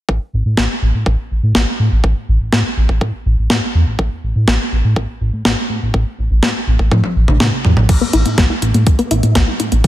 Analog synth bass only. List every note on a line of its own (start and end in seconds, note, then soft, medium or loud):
0.09 0.19 A1 loud
0.33 0.43 A1 medium
0.45 0.55 A2 medium
0.57 0.67 A1 loud
0.82 0.92 A1 medium
0.94 1.04 A2 medium
1.06 1.16 A1 medium
1.31 1.41 A1 medium
1.43 1.53 A2 medium
1.55 1.65 A1 loud
1.79 1.89 A2 medium
1.92 2.01 A1 medium
2.04 2.14 A1 medium
2.28 2.38 A1 loud
2.40 2.50 A1 medium
2.52 2.62 A2 loud
2.77 2.87 A1 medium
2.89 2.99 A1 medium
3.01 3.11 A2 medium
3.26 3.36 A1 medium
3.38 3.48 A1 medium
3.50 3.60 A2 loud
3.74 3.84 E2 medium
3.87 3.97 A1 medium
3.99 4.09 A1 medium
4.23 4.33 A1 medium
4.36 4.45 A2 medium
4.48 4.58 A1 loud
4.72 4.82 A1 medium
4.84 4.94 A2 medium
4.96 5.06 A1 loud
5.21 5.31 A1 medium
5.33 5.43 A2 medium
5.45 5.55 A1 medium
5.70 5.79 A2 medium
5.82 5.92 A1 medium
5.94 6.04 A1 medium
6.18 6.28 A1 loud
6.31 6.40 A1 medium
6.43 6.53 A2 loud
6.67 6.77 A1 medium
6.79 6.89 A1 medium
6.92 7.01 A2 loud
7.16 7.26 A1 medium
7.28 7.38 A1 medium
7.40 7.50 A2 loud
7.65 7.75 E2 medium
7.77 7.87 A1 medium
7.89 7.99 A1 medium
8.13 8.23 A1 medium
8.26 8.36 A2 medium
8.38 8.48 A1 loud
8.62 8.72 A1 medium
8.74 8.84 A2 medium
8.87 8.97 A1 loud
9.11 9.21 A1 medium
9.23 9.33 A2 medium
9.35 9.45 A1 loud
9.60 9.70 A2 medium
9.72 9.82 A1 medium